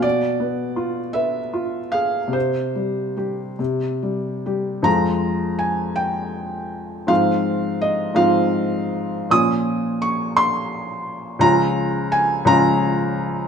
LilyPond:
<<
  \new Staff \with { instrumentName = "Felt piano" } { \time 6/8 \key f \minor \tempo 4. = 54 d''4. e''4 f''8 | c''4. r4. | bes''4 aes''8 g''4. | f''4 ees''8 f''4. |
ees'''4 des'''8 c'''4. | bes''4 aes''8 bes''4. | }
  \new Staff \with { instrumentName = "Felt piano" } { \clef bass \time 6/8 \key f \minor b,8 b8 f'8 b'8 f'8 gis'8 | c8 g8 <g g'>8 c8 g8 <g g'>8 | <f, f aes f'>2. | <aes, f c' f'>4. <aes, f c' f'>4. |
<bes, f des' f'>2. | <des, f des' f'>4. <des, f des' f'>4. | }
>>